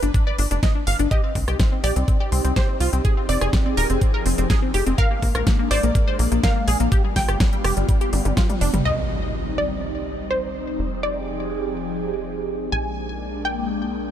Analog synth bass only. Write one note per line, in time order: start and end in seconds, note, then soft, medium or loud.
0.03 0.11 G1 medium
0.39 0.47 G1 medium
0.51 0.59 F1 medium
0.87 0.96 G1 medium
0.99 1.08 G1 medium
1.35 1.44 C2 loud
1.48 1.56 C2 medium
1.84 1.92 A#1 medium
1.96 2.04 C2 medium
2.32 2.41 C2 medium
2.45 2.53 C2 medium
2.80 2.89 C2 medium
2.93 3.01 C2 medium
3.29 3.37 F1 loud
3.41 3.49 F1 medium
3.77 3.86 D#1 loud
3.90 3.98 F1 medium
4.26 4.34 F1 medium
4.38 4.46 F1 medium
4.74 4.83 F1 medium
4.87 4.95 F1 medium
5.23 5.31 A#1 medium
5.35 5.43 A#1 medium
5.71 5.79 G#1 medium
5.83 5.91 A#1 medium
6.19 6.28 A#1 medium
6.32 6.40 A#1 medium
6.68 6.76 A#1 medium
6.80 6.88 A#1 medium
7.16 7.25 G1 loud
7.29 7.37 G1 medium
7.64 7.73 F1 medium
7.77 7.85 G1 medium
8.13 8.21 G1 medium
8.25 8.33 G1 medium
8.61 8.70 F1 loud
8.74 8.82 G1 medium
8.85 10.77 C2 medium
10.79 12.70 F1 medium
12.72 14.11 A#1 medium